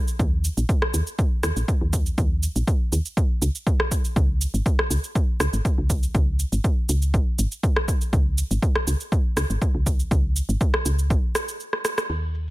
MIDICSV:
0, 0, Header, 1, 3, 480
1, 0, Start_track
1, 0, Tempo, 495868
1, 190, Time_signature, 4, 2, 24, 8
1, 12104, End_track
2, 0, Start_track
2, 0, Title_t, "FM bass"
2, 0, Program_c, 0, 39
2, 188, Note_on_c, 0, 39, 98
2, 477, Note_off_c, 0, 39, 0
2, 555, Note_on_c, 0, 34, 87
2, 625, Note_off_c, 0, 34, 0
2, 907, Note_on_c, 0, 39, 83
2, 986, Note_off_c, 0, 39, 0
2, 1388, Note_on_c, 0, 39, 102
2, 1467, Note_off_c, 0, 39, 0
2, 1513, Note_on_c, 0, 34, 84
2, 1584, Note_off_c, 0, 34, 0
2, 1755, Note_on_c, 0, 39, 85
2, 2039, Note_off_c, 0, 39, 0
2, 2109, Note_on_c, 0, 39, 96
2, 2398, Note_off_c, 0, 39, 0
2, 2476, Note_on_c, 0, 34, 83
2, 2546, Note_off_c, 0, 34, 0
2, 2830, Note_on_c, 0, 39, 80
2, 2908, Note_off_c, 0, 39, 0
2, 3308, Note_on_c, 0, 37, 88
2, 3387, Note_off_c, 0, 37, 0
2, 4029, Note_on_c, 0, 37, 100
2, 4318, Note_off_c, 0, 37, 0
2, 4394, Note_on_c, 0, 32, 84
2, 4465, Note_off_c, 0, 32, 0
2, 4747, Note_on_c, 0, 37, 82
2, 4826, Note_off_c, 0, 37, 0
2, 5227, Note_on_c, 0, 37, 97
2, 5306, Note_off_c, 0, 37, 0
2, 5355, Note_on_c, 0, 32, 87
2, 5425, Note_off_c, 0, 32, 0
2, 5596, Note_on_c, 0, 37, 86
2, 5880, Note_off_c, 0, 37, 0
2, 5949, Note_on_c, 0, 37, 100
2, 6238, Note_off_c, 0, 37, 0
2, 6314, Note_on_c, 0, 32, 86
2, 6385, Note_off_c, 0, 32, 0
2, 6671, Note_on_c, 0, 37, 83
2, 6911, Note_on_c, 0, 35, 104
2, 6925, Note_off_c, 0, 37, 0
2, 6988, Note_off_c, 0, 35, 0
2, 7150, Note_on_c, 0, 32, 80
2, 7228, Note_off_c, 0, 32, 0
2, 7869, Note_on_c, 0, 37, 104
2, 8158, Note_off_c, 0, 37, 0
2, 8236, Note_on_c, 0, 32, 88
2, 8306, Note_off_c, 0, 32, 0
2, 8588, Note_on_c, 0, 37, 81
2, 8667, Note_off_c, 0, 37, 0
2, 9067, Note_on_c, 0, 37, 104
2, 9146, Note_off_c, 0, 37, 0
2, 9195, Note_on_c, 0, 32, 86
2, 9266, Note_off_c, 0, 32, 0
2, 9434, Note_on_c, 0, 37, 84
2, 9719, Note_off_c, 0, 37, 0
2, 9788, Note_on_c, 0, 37, 100
2, 10077, Note_off_c, 0, 37, 0
2, 10153, Note_on_c, 0, 32, 90
2, 10224, Note_off_c, 0, 32, 0
2, 10508, Note_on_c, 0, 37, 82
2, 10748, Note_on_c, 0, 35, 101
2, 10763, Note_off_c, 0, 37, 0
2, 10827, Note_off_c, 0, 35, 0
2, 11708, Note_on_c, 0, 39, 84
2, 12104, Note_off_c, 0, 39, 0
2, 12104, End_track
3, 0, Start_track
3, 0, Title_t, "Drums"
3, 74, Note_on_c, 9, 69, 52
3, 171, Note_off_c, 9, 69, 0
3, 188, Note_on_c, 9, 36, 120
3, 188, Note_on_c, 9, 69, 39
3, 285, Note_off_c, 9, 36, 0
3, 285, Note_off_c, 9, 69, 0
3, 429, Note_on_c, 9, 69, 93
3, 525, Note_off_c, 9, 69, 0
3, 555, Note_on_c, 9, 69, 54
3, 652, Note_off_c, 9, 69, 0
3, 668, Note_on_c, 9, 36, 113
3, 669, Note_on_c, 9, 69, 37
3, 765, Note_off_c, 9, 36, 0
3, 766, Note_off_c, 9, 69, 0
3, 795, Note_on_c, 9, 37, 82
3, 892, Note_off_c, 9, 37, 0
3, 908, Note_on_c, 9, 69, 94
3, 1005, Note_off_c, 9, 69, 0
3, 1035, Note_on_c, 9, 69, 52
3, 1132, Note_off_c, 9, 69, 0
3, 1148, Note_on_c, 9, 36, 118
3, 1148, Note_on_c, 9, 69, 40
3, 1245, Note_off_c, 9, 36, 0
3, 1245, Note_off_c, 9, 69, 0
3, 1388, Note_on_c, 9, 37, 84
3, 1388, Note_on_c, 9, 69, 95
3, 1485, Note_off_c, 9, 37, 0
3, 1485, Note_off_c, 9, 69, 0
3, 1515, Note_on_c, 9, 69, 53
3, 1612, Note_off_c, 9, 69, 0
3, 1629, Note_on_c, 9, 36, 119
3, 1629, Note_on_c, 9, 69, 39
3, 1725, Note_off_c, 9, 36, 0
3, 1726, Note_off_c, 9, 69, 0
3, 1868, Note_on_c, 9, 69, 93
3, 1869, Note_on_c, 9, 36, 85
3, 1965, Note_off_c, 9, 69, 0
3, 1966, Note_off_c, 9, 36, 0
3, 1995, Note_on_c, 9, 69, 52
3, 2092, Note_off_c, 9, 69, 0
3, 2109, Note_on_c, 9, 36, 121
3, 2109, Note_on_c, 9, 69, 39
3, 2205, Note_off_c, 9, 69, 0
3, 2206, Note_off_c, 9, 36, 0
3, 2349, Note_on_c, 9, 69, 92
3, 2446, Note_off_c, 9, 69, 0
3, 2476, Note_on_c, 9, 69, 54
3, 2572, Note_off_c, 9, 69, 0
3, 2589, Note_on_c, 9, 36, 115
3, 2590, Note_on_c, 9, 69, 38
3, 2686, Note_off_c, 9, 36, 0
3, 2686, Note_off_c, 9, 69, 0
3, 2830, Note_on_c, 9, 69, 92
3, 2927, Note_off_c, 9, 69, 0
3, 2957, Note_on_c, 9, 69, 53
3, 3053, Note_off_c, 9, 69, 0
3, 3069, Note_on_c, 9, 36, 118
3, 3071, Note_on_c, 9, 69, 39
3, 3165, Note_off_c, 9, 36, 0
3, 3167, Note_off_c, 9, 69, 0
3, 3310, Note_on_c, 9, 69, 91
3, 3407, Note_off_c, 9, 69, 0
3, 3437, Note_on_c, 9, 69, 53
3, 3534, Note_off_c, 9, 69, 0
3, 3548, Note_on_c, 9, 36, 114
3, 3551, Note_on_c, 9, 69, 38
3, 3645, Note_off_c, 9, 36, 0
3, 3648, Note_off_c, 9, 69, 0
3, 3677, Note_on_c, 9, 37, 76
3, 3773, Note_off_c, 9, 37, 0
3, 3789, Note_on_c, 9, 36, 79
3, 3790, Note_on_c, 9, 69, 92
3, 3886, Note_off_c, 9, 36, 0
3, 3887, Note_off_c, 9, 69, 0
3, 3917, Note_on_c, 9, 69, 52
3, 4013, Note_off_c, 9, 69, 0
3, 4029, Note_on_c, 9, 36, 120
3, 4030, Note_on_c, 9, 69, 39
3, 4126, Note_off_c, 9, 36, 0
3, 4126, Note_off_c, 9, 69, 0
3, 4270, Note_on_c, 9, 69, 93
3, 4367, Note_off_c, 9, 69, 0
3, 4397, Note_on_c, 9, 69, 52
3, 4494, Note_off_c, 9, 69, 0
3, 4509, Note_on_c, 9, 36, 107
3, 4510, Note_on_c, 9, 69, 37
3, 4606, Note_off_c, 9, 36, 0
3, 4607, Note_off_c, 9, 69, 0
3, 4637, Note_on_c, 9, 37, 76
3, 4733, Note_off_c, 9, 37, 0
3, 4750, Note_on_c, 9, 69, 91
3, 4847, Note_off_c, 9, 69, 0
3, 4876, Note_on_c, 9, 69, 48
3, 4973, Note_off_c, 9, 69, 0
3, 4989, Note_on_c, 9, 36, 113
3, 4989, Note_on_c, 9, 69, 37
3, 5086, Note_off_c, 9, 36, 0
3, 5086, Note_off_c, 9, 69, 0
3, 5229, Note_on_c, 9, 37, 76
3, 5229, Note_on_c, 9, 69, 90
3, 5326, Note_off_c, 9, 37, 0
3, 5326, Note_off_c, 9, 69, 0
3, 5356, Note_on_c, 9, 69, 51
3, 5453, Note_off_c, 9, 69, 0
3, 5469, Note_on_c, 9, 36, 110
3, 5470, Note_on_c, 9, 69, 38
3, 5566, Note_off_c, 9, 36, 0
3, 5567, Note_off_c, 9, 69, 0
3, 5709, Note_on_c, 9, 36, 80
3, 5709, Note_on_c, 9, 69, 86
3, 5806, Note_off_c, 9, 36, 0
3, 5806, Note_off_c, 9, 69, 0
3, 5837, Note_on_c, 9, 69, 49
3, 5933, Note_off_c, 9, 69, 0
3, 5949, Note_on_c, 9, 36, 113
3, 5949, Note_on_c, 9, 69, 38
3, 6046, Note_off_c, 9, 36, 0
3, 6046, Note_off_c, 9, 69, 0
3, 6189, Note_on_c, 9, 69, 84
3, 6286, Note_off_c, 9, 69, 0
3, 6316, Note_on_c, 9, 69, 50
3, 6412, Note_off_c, 9, 69, 0
3, 6429, Note_on_c, 9, 69, 36
3, 6430, Note_on_c, 9, 36, 105
3, 6525, Note_off_c, 9, 69, 0
3, 6527, Note_off_c, 9, 36, 0
3, 6669, Note_on_c, 9, 69, 86
3, 6766, Note_off_c, 9, 69, 0
3, 6796, Note_on_c, 9, 69, 49
3, 6893, Note_off_c, 9, 69, 0
3, 6910, Note_on_c, 9, 36, 107
3, 6910, Note_on_c, 9, 69, 37
3, 7007, Note_off_c, 9, 36, 0
3, 7007, Note_off_c, 9, 69, 0
3, 7150, Note_on_c, 9, 69, 87
3, 7247, Note_off_c, 9, 69, 0
3, 7276, Note_on_c, 9, 69, 50
3, 7373, Note_off_c, 9, 69, 0
3, 7389, Note_on_c, 9, 36, 112
3, 7389, Note_on_c, 9, 69, 36
3, 7486, Note_off_c, 9, 36, 0
3, 7486, Note_off_c, 9, 69, 0
3, 7516, Note_on_c, 9, 37, 74
3, 7613, Note_off_c, 9, 37, 0
3, 7629, Note_on_c, 9, 36, 80
3, 7630, Note_on_c, 9, 69, 87
3, 7726, Note_off_c, 9, 36, 0
3, 7727, Note_off_c, 9, 69, 0
3, 7756, Note_on_c, 9, 69, 47
3, 7853, Note_off_c, 9, 69, 0
3, 7869, Note_on_c, 9, 36, 109
3, 7870, Note_on_c, 9, 69, 36
3, 7966, Note_off_c, 9, 36, 0
3, 7967, Note_off_c, 9, 69, 0
3, 8110, Note_on_c, 9, 69, 86
3, 8207, Note_off_c, 9, 69, 0
3, 8237, Note_on_c, 9, 69, 50
3, 8334, Note_off_c, 9, 69, 0
3, 8349, Note_on_c, 9, 36, 103
3, 8350, Note_on_c, 9, 69, 35
3, 8445, Note_off_c, 9, 36, 0
3, 8447, Note_off_c, 9, 69, 0
3, 8475, Note_on_c, 9, 37, 76
3, 8572, Note_off_c, 9, 37, 0
3, 8589, Note_on_c, 9, 69, 90
3, 8686, Note_off_c, 9, 69, 0
3, 8715, Note_on_c, 9, 69, 49
3, 8812, Note_off_c, 9, 69, 0
3, 8828, Note_on_c, 9, 36, 108
3, 8830, Note_on_c, 9, 69, 36
3, 8925, Note_off_c, 9, 36, 0
3, 8926, Note_off_c, 9, 69, 0
3, 9070, Note_on_c, 9, 37, 78
3, 9070, Note_on_c, 9, 69, 89
3, 9166, Note_off_c, 9, 37, 0
3, 9166, Note_off_c, 9, 69, 0
3, 9196, Note_on_c, 9, 69, 48
3, 9293, Note_off_c, 9, 69, 0
3, 9308, Note_on_c, 9, 36, 113
3, 9309, Note_on_c, 9, 69, 36
3, 9405, Note_off_c, 9, 36, 0
3, 9406, Note_off_c, 9, 69, 0
3, 9548, Note_on_c, 9, 36, 77
3, 9549, Note_on_c, 9, 69, 85
3, 9645, Note_off_c, 9, 36, 0
3, 9646, Note_off_c, 9, 69, 0
3, 9676, Note_on_c, 9, 69, 49
3, 9773, Note_off_c, 9, 69, 0
3, 9788, Note_on_c, 9, 36, 113
3, 9789, Note_on_c, 9, 69, 37
3, 9885, Note_off_c, 9, 36, 0
3, 9886, Note_off_c, 9, 69, 0
3, 10029, Note_on_c, 9, 69, 84
3, 10125, Note_off_c, 9, 69, 0
3, 10156, Note_on_c, 9, 69, 50
3, 10253, Note_off_c, 9, 69, 0
3, 10268, Note_on_c, 9, 36, 106
3, 10268, Note_on_c, 9, 69, 36
3, 10365, Note_off_c, 9, 36, 0
3, 10365, Note_off_c, 9, 69, 0
3, 10394, Note_on_c, 9, 37, 79
3, 10491, Note_off_c, 9, 37, 0
3, 10508, Note_on_c, 9, 69, 88
3, 10604, Note_off_c, 9, 69, 0
3, 10635, Note_on_c, 9, 69, 49
3, 10732, Note_off_c, 9, 69, 0
3, 10748, Note_on_c, 9, 36, 113
3, 10749, Note_on_c, 9, 69, 36
3, 10845, Note_off_c, 9, 36, 0
3, 10845, Note_off_c, 9, 69, 0
3, 10988, Note_on_c, 9, 37, 86
3, 10988, Note_on_c, 9, 69, 86
3, 11085, Note_off_c, 9, 37, 0
3, 11085, Note_off_c, 9, 69, 0
3, 11115, Note_on_c, 9, 69, 52
3, 11212, Note_off_c, 9, 69, 0
3, 11228, Note_on_c, 9, 69, 37
3, 11325, Note_off_c, 9, 69, 0
3, 11355, Note_on_c, 9, 37, 51
3, 11451, Note_off_c, 9, 37, 0
3, 11468, Note_on_c, 9, 37, 78
3, 11468, Note_on_c, 9, 69, 86
3, 11565, Note_off_c, 9, 37, 0
3, 11565, Note_off_c, 9, 69, 0
3, 11595, Note_on_c, 9, 37, 79
3, 11595, Note_on_c, 9, 69, 50
3, 11692, Note_off_c, 9, 37, 0
3, 11692, Note_off_c, 9, 69, 0
3, 11709, Note_on_c, 9, 49, 73
3, 11709, Note_on_c, 9, 69, 34
3, 11806, Note_off_c, 9, 49, 0
3, 11806, Note_off_c, 9, 69, 0
3, 11948, Note_on_c, 9, 69, 79
3, 12045, Note_off_c, 9, 69, 0
3, 12104, End_track
0, 0, End_of_file